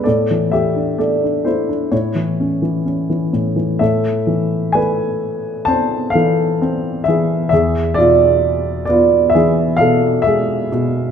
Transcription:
X:1
M:4/4
L:1/16
Q:1/4=65
K:Am
V:1 name="Grand piano"
[Ad]2 [Ge]2 [Ad]2 [Ec]2 [E^c]6 z2 | [Ae]4 [B^g]4 [ca]2 [Af]4 [^Ge]2 | [^Ge]2 [Fd]4 [Fd]2 [Ge]2 [Af]2 [Ge]4 |]
V:2 name="Grand piano" clef=bass
A,, E, A, D A, D A, D A,, E, ^C E, C E, A,, E, | A,,2 E,2 A,4 C2 E,2 C2 E,2 | E,,2 B,,4 B,2 E,2 B,,2 ^G,2 B,,2 |]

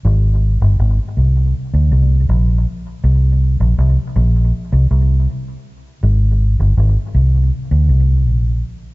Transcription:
X:1
M:4/4
L:1/16
Q:1/4=80
K:Bbmix
V:1 name="Fingered electric bass" clef=bass
A,,,3 G,,, A,,, z C,,2 z D,, C,,2 B,,,2 z2 | C,,3 B,,, C,, z B,,,2 z C,, C,,2 z4 | A,,,3 G,,, A,,, z C,,2 z D,, C,,2 B,,,2 z2 |]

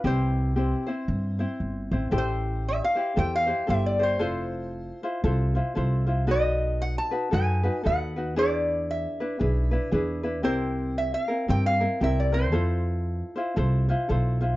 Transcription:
X:1
M:4/4
L:1/16
Q:"Swing" 1/4=115
K:Am
V:1 name="Resonator guitar played with a steel bar"
c12 z4 | [K:Flyd] c4 e f3 g f3 e d c2- | c6 z8 z2 | ^d4 ^f a3 ^g4 f4 |
d4 e8 z4 | c4 e f3 g f3 e d c2- | c6 z8 z2 |]
V:2 name="Ukulele"
[CEGc]4 [CEGc]2 [CEc]4 [CEc]4 [CEc]2 | [K:Flyd] [EGAc]6 [EGc]2 [EGAc]2 [EGc]2 [EGAc]2 [EGc]2 | [EFAc]6 [EFc]2 [EFAc]2 [EFc]2 [EFAc]2 [EFc]2 | [^D^FAB]6 [DFB]2 [DFAB]2 [DFB]2 [DFAB]2 [DFB]2 |
[DE^GB]6 [DEB]2 [DEGB]2 [DEB]2 [DEGB]2 [DEB]2 | [CEG_B]6 [CEB]2 [CEGB]2 [CEB]2 [CEGB]2 [CEB]2 | [EFAc]6 [EFc]2 [EFAc]2 [EFc]2 [EFAc]2 [EFc]2 |]
V:3 name="Upright bass" clef=bass
C,,8 G,,4 G,,,2 A,,,2 | [K:Flyd] A,,,8 E,,4 G,,,4 | F,,,8 C,,4 C,,4 | B,,,8 ^F,,4 ^D,,4 |
E,,8 B,,,4 E,,4 | C,,8 G,,4 C,,4 | F,,8 C,,4 B,,,4 |]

